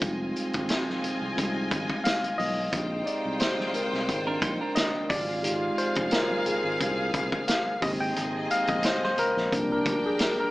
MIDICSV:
0, 0, Header, 1, 8, 480
1, 0, Start_track
1, 0, Tempo, 679502
1, 11, Time_signature, 4, 2, 24, 8
1, 7423, End_track
2, 0, Start_track
2, 0, Title_t, "Violin section"
2, 0, Program_c, 0, 48
2, 9, Note_on_c, 0, 75, 72
2, 10, Note_on_c, 0, 80, 84
2, 13, Note_on_c, 0, 65, 71
2, 1899, Note_off_c, 0, 75, 0
2, 1899, Note_off_c, 0, 80, 0
2, 1901, Note_off_c, 0, 65, 0
2, 1927, Note_on_c, 0, 65, 75
2, 1929, Note_on_c, 0, 72, 79
2, 1929, Note_on_c, 0, 79, 85
2, 3578, Note_off_c, 0, 65, 0
2, 3579, Note_off_c, 0, 72, 0
2, 3579, Note_off_c, 0, 79, 0
2, 3609, Note_on_c, 0, 60, 80
2, 3610, Note_on_c, 0, 68, 89
2, 3613, Note_on_c, 0, 77, 99
2, 5499, Note_off_c, 0, 60, 0
2, 5500, Note_off_c, 0, 68, 0
2, 5501, Note_off_c, 0, 77, 0
2, 5527, Note_on_c, 0, 60, 88
2, 5529, Note_on_c, 0, 68, 75
2, 5530, Note_on_c, 0, 75, 92
2, 6703, Note_off_c, 0, 60, 0
2, 6704, Note_off_c, 0, 68, 0
2, 6705, Note_off_c, 0, 75, 0
2, 6731, Note_on_c, 0, 70, 74
2, 6731, Note_on_c, 0, 79, 89
2, 6737, Note_on_c, 0, 62, 85
2, 7423, Note_off_c, 0, 62, 0
2, 7423, Note_off_c, 0, 70, 0
2, 7423, Note_off_c, 0, 79, 0
2, 7423, End_track
3, 0, Start_track
3, 0, Title_t, "Tine electric piano"
3, 0, Program_c, 1, 4
3, 0, Control_c, 1, 64, 127
3, 0, Note_on_c, 1, 65, 78
3, 2, Note_on_c, 1, 55, 51
3, 8, Note_on_c, 1, 56, 47
3, 13, Note_on_c, 1, 63, 55
3, 21, Control_c, 1, 64, 0
3, 144, Control_c, 1, 64, 127
3, 219, Note_off_c, 1, 65, 0
3, 951, Note_off_c, 1, 55, 0
3, 953, Note_off_c, 1, 56, 0
3, 958, Note_off_c, 1, 63, 0
3, 960, Note_on_c, 1, 55, 52
3, 961, Note_on_c, 1, 56, 44
3, 967, Note_on_c, 1, 63, 51
3, 1180, Note_off_c, 1, 55, 0
3, 1181, Note_off_c, 1, 56, 0
3, 1184, Note_off_c, 1, 63, 0
3, 1441, Note_on_c, 1, 77, 96
3, 1681, Note_on_c, 1, 75, 94
3, 1692, Note_off_c, 1, 77, 0
3, 1936, Control_c, 1, 64, 0
3, 2074, Control_c, 1, 64, 127
3, 2136, Note_off_c, 1, 75, 0
3, 2161, Note_on_c, 1, 74, 80
3, 2404, Note_on_c, 1, 72, 88
3, 2412, Note_off_c, 1, 74, 0
3, 2641, Note_on_c, 1, 56, 50
3, 2646, Note_on_c, 1, 60, 50
3, 2647, Note_on_c, 1, 70, 70
3, 2649, Note_on_c, 1, 63, 50
3, 2653, Note_off_c, 1, 72, 0
3, 3099, Note_off_c, 1, 70, 0
3, 3335, Note_off_c, 1, 56, 0
3, 3338, Note_off_c, 1, 60, 0
3, 3339, Note_off_c, 1, 63, 0
3, 3358, Note_on_c, 1, 75, 91
3, 3600, Note_on_c, 1, 74, 106
3, 3609, Note_off_c, 1, 75, 0
3, 3614, Control_c, 1, 64, 0
3, 3735, Control_c, 1, 64, 127
3, 3835, Note_on_c, 1, 56, 47
3, 3835, Note_on_c, 1, 67, 57
3, 3843, Note_on_c, 1, 63, 62
3, 4055, Note_off_c, 1, 74, 0
3, 4083, Note_on_c, 1, 72, 92
3, 4323, Note_on_c, 1, 70, 97
3, 4332, Note_off_c, 1, 72, 0
3, 4506, Note_off_c, 1, 70, 0
3, 4515, Note_on_c, 1, 70, 58
3, 4563, Note_off_c, 1, 70, 0
3, 4565, Note_on_c, 1, 68, 67
3, 5017, Note_off_c, 1, 68, 0
3, 5283, Note_on_c, 1, 77, 86
3, 5492, Note_off_c, 1, 56, 0
3, 5492, Note_off_c, 1, 67, 0
3, 5496, Note_off_c, 1, 63, 0
3, 5507, Note_off_c, 1, 77, 0
3, 5517, Note_on_c, 1, 67, 60
3, 5522, Note_on_c, 1, 58, 46
3, 5526, Note_on_c, 1, 60, 57
3, 5528, Note_on_c, 1, 75, 91
3, 5535, Control_c, 1, 64, 0
3, 5586, Note_off_c, 1, 75, 0
3, 5655, Note_on_c, 1, 79, 102
3, 5678, Control_c, 1, 64, 127
3, 5848, Note_off_c, 1, 67, 0
3, 5850, Note_off_c, 1, 58, 0
3, 5852, Note_off_c, 1, 60, 0
3, 6012, Note_on_c, 1, 77, 100
3, 6016, Note_off_c, 1, 79, 0
3, 6069, Note_off_c, 1, 77, 0
3, 6140, Note_on_c, 1, 75, 88
3, 6251, Note_off_c, 1, 75, 0
3, 6255, Note_on_c, 1, 72, 94
3, 6382, Note_off_c, 1, 72, 0
3, 6390, Note_on_c, 1, 72, 91
3, 6491, Note_on_c, 1, 70, 96
3, 6497, Note_off_c, 1, 72, 0
3, 6720, Note_on_c, 1, 53, 55
3, 6724, Note_on_c, 1, 58, 53
3, 6731, Note_on_c, 1, 62, 62
3, 6737, Control_c, 1, 64, 0
3, 6844, Control_c, 1, 64, 127
3, 6860, Note_off_c, 1, 70, 0
3, 6868, Note_on_c, 1, 70, 78
3, 7049, Note_off_c, 1, 53, 0
3, 7052, Note_off_c, 1, 58, 0
3, 7056, Note_off_c, 1, 62, 0
3, 7086, Note_off_c, 1, 70, 0
3, 7106, Note_on_c, 1, 68, 84
3, 7212, Note_on_c, 1, 70, 76
3, 7215, Note_off_c, 1, 68, 0
3, 7339, Note_off_c, 1, 70, 0
3, 7348, Note_on_c, 1, 70, 85
3, 7423, Note_off_c, 1, 70, 0
3, 7423, End_track
4, 0, Start_track
4, 0, Title_t, "Clean electric guitar"
4, 0, Program_c, 2, 27
4, 3016, Note_on_c, 2, 70, 72
4, 3021, Note_on_c, 2, 62, 57
4, 3121, Note_off_c, 2, 70, 0
4, 3124, Note_off_c, 2, 62, 0
4, 3124, Note_on_c, 2, 72, 61
4, 3131, Note_on_c, 2, 63, 53
4, 3248, Note_off_c, 2, 72, 0
4, 3252, Note_off_c, 2, 63, 0
4, 3256, Note_on_c, 2, 70, 67
4, 3261, Note_on_c, 2, 62, 56
4, 3589, Note_off_c, 2, 70, 0
4, 3591, Note_off_c, 2, 62, 0
4, 7423, End_track
5, 0, Start_track
5, 0, Title_t, "Trombone section"
5, 0, Program_c, 3, 61
5, 16, Note_on_c, 3, 44, 73
5, 16, Note_on_c, 3, 60, 76
5, 17, Note_on_c, 3, 53, 71
5, 1663, Note_off_c, 3, 44, 0
5, 1663, Note_off_c, 3, 53, 0
5, 1663, Note_off_c, 3, 60, 0
5, 1931, Note_on_c, 3, 48, 77
5, 1932, Note_on_c, 3, 56, 76
5, 1933, Note_on_c, 3, 63, 83
5, 3340, Note_off_c, 3, 48, 0
5, 3340, Note_off_c, 3, 56, 0
5, 3341, Note_off_c, 3, 63, 0
5, 3604, Note_on_c, 3, 56, 74
5, 3605, Note_on_c, 3, 65, 89
5, 3606, Note_on_c, 3, 48, 73
5, 5257, Note_off_c, 3, 48, 0
5, 5257, Note_off_c, 3, 56, 0
5, 5257, Note_off_c, 3, 65, 0
5, 5525, Note_on_c, 3, 48, 74
5, 5526, Note_on_c, 3, 56, 76
5, 5527, Note_on_c, 3, 63, 81
5, 6466, Note_off_c, 3, 48, 0
5, 6467, Note_off_c, 3, 56, 0
5, 6468, Note_off_c, 3, 63, 0
5, 6730, Note_on_c, 3, 62, 80
5, 6731, Note_on_c, 3, 46, 74
5, 6731, Note_on_c, 3, 55, 74
5, 7423, Note_off_c, 3, 46, 0
5, 7423, Note_off_c, 3, 55, 0
5, 7423, Note_off_c, 3, 62, 0
5, 7423, End_track
6, 0, Start_track
6, 0, Title_t, "Fingered electric bass"
6, 0, Program_c, 4, 33
6, 13, Note_on_c, 4, 29, 91
6, 220, Note_off_c, 4, 29, 0
6, 384, Note_on_c, 4, 32, 70
6, 478, Note_off_c, 4, 32, 0
6, 860, Note_on_c, 4, 36, 89
6, 955, Note_off_c, 4, 36, 0
6, 976, Note_on_c, 4, 36, 95
6, 1180, Note_off_c, 4, 36, 0
6, 1211, Note_on_c, 4, 32, 81
6, 1322, Note_off_c, 4, 32, 0
6, 1691, Note_on_c, 4, 35, 97
6, 1898, Note_off_c, 4, 35, 0
6, 1927, Note_on_c, 4, 34, 98
6, 2135, Note_off_c, 4, 34, 0
6, 2298, Note_on_c, 4, 36, 72
6, 2393, Note_off_c, 4, 36, 0
6, 2778, Note_on_c, 4, 36, 73
6, 2873, Note_off_c, 4, 36, 0
6, 2888, Note_on_c, 4, 32, 87
6, 3095, Note_off_c, 4, 32, 0
6, 3123, Note_on_c, 4, 34, 80
6, 3237, Note_off_c, 4, 34, 0
6, 3603, Note_on_c, 4, 32, 93
6, 4020, Note_off_c, 4, 32, 0
6, 4215, Note_on_c, 4, 29, 75
6, 4311, Note_off_c, 4, 29, 0
6, 4693, Note_on_c, 4, 32, 83
6, 4790, Note_off_c, 4, 32, 0
6, 4809, Note_on_c, 4, 36, 103
6, 5015, Note_off_c, 4, 36, 0
6, 5045, Note_on_c, 4, 36, 73
6, 5158, Note_off_c, 4, 36, 0
6, 5527, Note_on_c, 4, 32, 110
6, 5734, Note_off_c, 4, 32, 0
6, 5768, Note_on_c, 4, 32, 100
6, 5975, Note_off_c, 4, 32, 0
6, 6138, Note_on_c, 4, 34, 90
6, 6233, Note_off_c, 4, 34, 0
6, 6620, Note_on_c, 4, 34, 91
6, 6714, Note_off_c, 4, 34, 0
6, 6729, Note_on_c, 4, 36, 96
6, 6936, Note_off_c, 4, 36, 0
6, 6966, Note_on_c, 4, 38, 79
6, 7078, Note_off_c, 4, 38, 0
6, 7423, End_track
7, 0, Start_track
7, 0, Title_t, "Muted fingered electric bass strokes"
7, 733, Note_on_c, 9, 29, 45
7, 804, Note_off_c, 9, 29, 0
7, 2646, Note_on_c, 9, 29, 46
7, 2717, Note_off_c, 9, 29, 0
7, 4568, Note_on_c, 9, 29, 42
7, 4639, Note_off_c, 9, 29, 0
7, 6490, Note_on_c, 9, 29, 38
7, 6561, Note_off_c, 9, 29, 0
7, 7423, End_track
8, 0, Start_track
8, 0, Title_t, "Drums"
8, 10, Note_on_c, 9, 42, 90
8, 12, Note_on_c, 9, 36, 119
8, 17, Note_on_c, 9, 54, 48
8, 19, Note_on_c, 9, 62, 27
8, 19, Note_on_c, 9, 64, 61
8, 81, Note_off_c, 9, 42, 0
8, 83, Note_off_c, 9, 36, 0
8, 88, Note_off_c, 9, 54, 0
8, 89, Note_off_c, 9, 62, 0
8, 89, Note_off_c, 9, 64, 0
8, 254, Note_on_c, 9, 54, 46
8, 256, Note_on_c, 9, 62, 33
8, 257, Note_on_c, 9, 42, 61
8, 325, Note_off_c, 9, 54, 0
8, 327, Note_off_c, 9, 42, 0
8, 327, Note_off_c, 9, 62, 0
8, 377, Note_on_c, 9, 42, 48
8, 384, Note_on_c, 9, 36, 94
8, 447, Note_off_c, 9, 42, 0
8, 454, Note_off_c, 9, 36, 0
8, 485, Note_on_c, 9, 42, 91
8, 494, Note_on_c, 9, 54, 65
8, 497, Note_on_c, 9, 38, 103
8, 498, Note_on_c, 9, 62, 30
8, 556, Note_off_c, 9, 42, 0
8, 564, Note_off_c, 9, 54, 0
8, 567, Note_off_c, 9, 38, 0
8, 569, Note_off_c, 9, 62, 0
8, 631, Note_on_c, 9, 38, 31
8, 635, Note_on_c, 9, 63, 80
8, 701, Note_off_c, 9, 38, 0
8, 706, Note_off_c, 9, 63, 0
8, 732, Note_on_c, 9, 62, 36
8, 732, Note_on_c, 9, 64, 69
8, 733, Note_on_c, 9, 42, 71
8, 737, Note_on_c, 9, 54, 46
8, 802, Note_off_c, 9, 62, 0
8, 802, Note_off_c, 9, 64, 0
8, 804, Note_off_c, 9, 42, 0
8, 808, Note_off_c, 9, 54, 0
8, 975, Note_on_c, 9, 62, 32
8, 976, Note_on_c, 9, 36, 83
8, 976, Note_on_c, 9, 42, 75
8, 981, Note_on_c, 9, 54, 25
8, 1046, Note_off_c, 9, 36, 0
8, 1046, Note_off_c, 9, 62, 0
8, 1047, Note_off_c, 9, 42, 0
8, 1052, Note_off_c, 9, 54, 0
8, 1210, Note_on_c, 9, 36, 108
8, 1215, Note_on_c, 9, 42, 60
8, 1217, Note_on_c, 9, 54, 30
8, 1222, Note_on_c, 9, 62, 30
8, 1222, Note_on_c, 9, 63, 65
8, 1281, Note_off_c, 9, 36, 0
8, 1286, Note_off_c, 9, 42, 0
8, 1287, Note_off_c, 9, 54, 0
8, 1293, Note_off_c, 9, 62, 0
8, 1293, Note_off_c, 9, 63, 0
8, 1339, Note_on_c, 9, 36, 84
8, 1409, Note_off_c, 9, 36, 0
8, 1448, Note_on_c, 9, 42, 89
8, 1451, Note_on_c, 9, 62, 31
8, 1452, Note_on_c, 9, 54, 76
8, 1457, Note_on_c, 9, 38, 107
8, 1519, Note_off_c, 9, 42, 0
8, 1521, Note_off_c, 9, 62, 0
8, 1522, Note_off_c, 9, 54, 0
8, 1528, Note_off_c, 9, 38, 0
8, 1575, Note_on_c, 9, 63, 46
8, 1582, Note_on_c, 9, 42, 48
8, 1645, Note_off_c, 9, 63, 0
8, 1653, Note_off_c, 9, 42, 0
8, 1683, Note_on_c, 9, 63, 70
8, 1683, Note_on_c, 9, 64, 62
8, 1690, Note_on_c, 9, 54, 42
8, 1693, Note_on_c, 9, 46, 70
8, 1753, Note_off_c, 9, 63, 0
8, 1753, Note_off_c, 9, 64, 0
8, 1761, Note_off_c, 9, 54, 0
8, 1763, Note_off_c, 9, 46, 0
8, 1926, Note_on_c, 9, 42, 84
8, 1927, Note_on_c, 9, 36, 116
8, 1933, Note_on_c, 9, 64, 62
8, 1934, Note_on_c, 9, 54, 46
8, 1997, Note_off_c, 9, 36, 0
8, 1997, Note_off_c, 9, 42, 0
8, 2004, Note_off_c, 9, 64, 0
8, 2005, Note_off_c, 9, 54, 0
8, 2167, Note_on_c, 9, 42, 68
8, 2173, Note_on_c, 9, 54, 46
8, 2238, Note_off_c, 9, 42, 0
8, 2243, Note_off_c, 9, 54, 0
8, 2399, Note_on_c, 9, 42, 85
8, 2409, Note_on_c, 9, 62, 28
8, 2411, Note_on_c, 9, 38, 104
8, 2411, Note_on_c, 9, 54, 72
8, 2470, Note_off_c, 9, 42, 0
8, 2479, Note_off_c, 9, 62, 0
8, 2481, Note_off_c, 9, 38, 0
8, 2481, Note_off_c, 9, 54, 0
8, 2540, Note_on_c, 9, 63, 72
8, 2541, Note_on_c, 9, 38, 34
8, 2610, Note_off_c, 9, 63, 0
8, 2612, Note_off_c, 9, 38, 0
8, 2641, Note_on_c, 9, 62, 31
8, 2641, Note_on_c, 9, 64, 73
8, 2642, Note_on_c, 9, 42, 71
8, 2650, Note_on_c, 9, 54, 46
8, 2712, Note_off_c, 9, 62, 0
8, 2712, Note_off_c, 9, 64, 0
8, 2713, Note_off_c, 9, 42, 0
8, 2721, Note_off_c, 9, 54, 0
8, 2779, Note_on_c, 9, 38, 34
8, 2850, Note_off_c, 9, 38, 0
8, 2886, Note_on_c, 9, 42, 70
8, 2888, Note_on_c, 9, 36, 74
8, 2894, Note_on_c, 9, 54, 28
8, 2957, Note_off_c, 9, 42, 0
8, 2958, Note_off_c, 9, 36, 0
8, 2965, Note_off_c, 9, 54, 0
8, 3122, Note_on_c, 9, 36, 110
8, 3122, Note_on_c, 9, 42, 65
8, 3136, Note_on_c, 9, 62, 30
8, 3136, Note_on_c, 9, 63, 70
8, 3192, Note_off_c, 9, 36, 0
8, 3193, Note_off_c, 9, 42, 0
8, 3206, Note_off_c, 9, 62, 0
8, 3206, Note_off_c, 9, 63, 0
8, 3360, Note_on_c, 9, 42, 107
8, 3368, Note_on_c, 9, 38, 108
8, 3368, Note_on_c, 9, 54, 79
8, 3430, Note_off_c, 9, 42, 0
8, 3439, Note_off_c, 9, 38, 0
8, 3439, Note_off_c, 9, 54, 0
8, 3491, Note_on_c, 9, 63, 41
8, 3562, Note_off_c, 9, 63, 0
8, 3602, Note_on_c, 9, 36, 108
8, 3604, Note_on_c, 9, 46, 67
8, 3604, Note_on_c, 9, 62, 31
8, 3604, Note_on_c, 9, 63, 65
8, 3604, Note_on_c, 9, 64, 63
8, 3610, Note_on_c, 9, 54, 44
8, 3673, Note_off_c, 9, 36, 0
8, 3674, Note_off_c, 9, 46, 0
8, 3675, Note_off_c, 9, 62, 0
8, 3675, Note_off_c, 9, 63, 0
8, 3675, Note_off_c, 9, 64, 0
8, 3681, Note_off_c, 9, 54, 0
8, 3842, Note_on_c, 9, 42, 94
8, 3849, Note_on_c, 9, 64, 67
8, 3854, Note_on_c, 9, 54, 52
8, 3913, Note_off_c, 9, 42, 0
8, 3920, Note_off_c, 9, 64, 0
8, 3924, Note_off_c, 9, 54, 0
8, 4082, Note_on_c, 9, 42, 68
8, 4091, Note_on_c, 9, 54, 52
8, 4153, Note_off_c, 9, 42, 0
8, 4161, Note_off_c, 9, 54, 0
8, 4204, Note_on_c, 9, 42, 51
8, 4214, Note_on_c, 9, 36, 93
8, 4275, Note_off_c, 9, 42, 0
8, 4284, Note_off_c, 9, 36, 0
8, 4315, Note_on_c, 9, 42, 93
8, 4327, Note_on_c, 9, 38, 113
8, 4327, Note_on_c, 9, 54, 72
8, 4329, Note_on_c, 9, 62, 27
8, 4386, Note_off_c, 9, 42, 0
8, 4398, Note_off_c, 9, 38, 0
8, 4398, Note_off_c, 9, 54, 0
8, 4400, Note_off_c, 9, 62, 0
8, 4458, Note_on_c, 9, 63, 75
8, 4529, Note_off_c, 9, 63, 0
8, 4559, Note_on_c, 9, 64, 70
8, 4562, Note_on_c, 9, 42, 71
8, 4569, Note_on_c, 9, 54, 50
8, 4630, Note_off_c, 9, 64, 0
8, 4632, Note_off_c, 9, 42, 0
8, 4639, Note_off_c, 9, 54, 0
8, 4806, Note_on_c, 9, 62, 34
8, 4807, Note_on_c, 9, 36, 86
8, 4807, Note_on_c, 9, 42, 77
8, 4876, Note_off_c, 9, 62, 0
8, 4877, Note_off_c, 9, 42, 0
8, 4878, Note_off_c, 9, 36, 0
8, 5043, Note_on_c, 9, 36, 97
8, 5046, Note_on_c, 9, 42, 67
8, 5053, Note_on_c, 9, 62, 28
8, 5053, Note_on_c, 9, 63, 61
8, 5114, Note_off_c, 9, 36, 0
8, 5117, Note_off_c, 9, 42, 0
8, 5123, Note_off_c, 9, 62, 0
8, 5123, Note_off_c, 9, 63, 0
8, 5173, Note_on_c, 9, 36, 85
8, 5244, Note_off_c, 9, 36, 0
8, 5283, Note_on_c, 9, 42, 99
8, 5289, Note_on_c, 9, 54, 90
8, 5291, Note_on_c, 9, 38, 106
8, 5353, Note_off_c, 9, 42, 0
8, 5359, Note_off_c, 9, 54, 0
8, 5362, Note_off_c, 9, 38, 0
8, 5412, Note_on_c, 9, 63, 38
8, 5483, Note_off_c, 9, 63, 0
8, 5524, Note_on_c, 9, 62, 27
8, 5524, Note_on_c, 9, 63, 58
8, 5524, Note_on_c, 9, 64, 61
8, 5526, Note_on_c, 9, 36, 114
8, 5528, Note_on_c, 9, 54, 46
8, 5532, Note_on_c, 9, 46, 65
8, 5594, Note_off_c, 9, 62, 0
8, 5594, Note_off_c, 9, 63, 0
8, 5594, Note_off_c, 9, 64, 0
8, 5597, Note_off_c, 9, 36, 0
8, 5599, Note_off_c, 9, 54, 0
8, 5603, Note_off_c, 9, 46, 0
8, 5766, Note_on_c, 9, 42, 100
8, 5771, Note_on_c, 9, 54, 50
8, 5774, Note_on_c, 9, 62, 33
8, 5774, Note_on_c, 9, 64, 67
8, 5837, Note_off_c, 9, 42, 0
8, 5842, Note_off_c, 9, 54, 0
8, 5844, Note_off_c, 9, 62, 0
8, 5844, Note_off_c, 9, 64, 0
8, 6006, Note_on_c, 9, 62, 31
8, 6008, Note_on_c, 9, 42, 66
8, 6013, Note_on_c, 9, 54, 52
8, 6076, Note_off_c, 9, 62, 0
8, 6079, Note_off_c, 9, 42, 0
8, 6084, Note_off_c, 9, 54, 0
8, 6126, Note_on_c, 9, 42, 46
8, 6136, Note_on_c, 9, 36, 90
8, 6197, Note_off_c, 9, 42, 0
8, 6206, Note_off_c, 9, 36, 0
8, 6236, Note_on_c, 9, 42, 88
8, 6246, Note_on_c, 9, 62, 34
8, 6247, Note_on_c, 9, 38, 94
8, 6247, Note_on_c, 9, 54, 68
8, 6306, Note_off_c, 9, 42, 0
8, 6317, Note_off_c, 9, 62, 0
8, 6318, Note_off_c, 9, 38, 0
8, 6318, Note_off_c, 9, 54, 0
8, 6379, Note_on_c, 9, 38, 35
8, 6379, Note_on_c, 9, 63, 87
8, 6449, Note_off_c, 9, 63, 0
8, 6450, Note_off_c, 9, 38, 0
8, 6477, Note_on_c, 9, 62, 36
8, 6477, Note_on_c, 9, 64, 76
8, 6482, Note_on_c, 9, 42, 72
8, 6494, Note_on_c, 9, 54, 44
8, 6547, Note_off_c, 9, 62, 0
8, 6547, Note_off_c, 9, 64, 0
8, 6553, Note_off_c, 9, 42, 0
8, 6564, Note_off_c, 9, 54, 0
8, 6617, Note_on_c, 9, 38, 35
8, 6688, Note_off_c, 9, 38, 0
8, 6727, Note_on_c, 9, 42, 78
8, 6727, Note_on_c, 9, 62, 34
8, 6728, Note_on_c, 9, 36, 75
8, 6732, Note_on_c, 9, 54, 28
8, 6798, Note_off_c, 9, 36, 0
8, 6798, Note_off_c, 9, 42, 0
8, 6798, Note_off_c, 9, 62, 0
8, 6802, Note_off_c, 9, 54, 0
8, 6963, Note_on_c, 9, 36, 111
8, 6966, Note_on_c, 9, 42, 71
8, 6973, Note_on_c, 9, 62, 33
8, 6973, Note_on_c, 9, 63, 61
8, 7034, Note_off_c, 9, 36, 0
8, 7036, Note_off_c, 9, 42, 0
8, 7044, Note_off_c, 9, 62, 0
8, 7044, Note_off_c, 9, 63, 0
8, 7198, Note_on_c, 9, 42, 97
8, 7207, Note_on_c, 9, 38, 111
8, 7208, Note_on_c, 9, 62, 32
8, 7209, Note_on_c, 9, 54, 84
8, 7269, Note_off_c, 9, 42, 0
8, 7277, Note_off_c, 9, 38, 0
8, 7279, Note_off_c, 9, 54, 0
8, 7279, Note_off_c, 9, 62, 0
8, 7332, Note_on_c, 9, 63, 45
8, 7403, Note_off_c, 9, 63, 0
8, 7423, End_track
0, 0, End_of_file